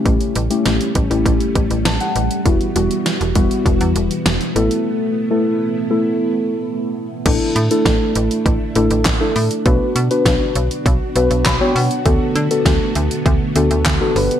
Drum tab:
CC |----------------|----------------|----------------|x---------------|
HH |xxxxxxxxxxxxxxxx|xxxxxxxxxxxxxxxx|----------------|x-xxx-xxx-xxx-ox|
CP |----------------|----------------|----------------|------------x---|
SD |----o-------o---|----o-------o---|----------------|----o-------o---|
BD |o-----o-o-o-----|o-----o-o-------|----------------|o---o---o---o---|

CC |----------------|----------------|
HH |x-xxx-xxx-xxx-ox|x-xxx-xxx-xxx-ox|
CP |------------x---|------------x---|
SD |----o-------o---|----o-------o---|
BD |o---o---o---o---|o---o---o---o---|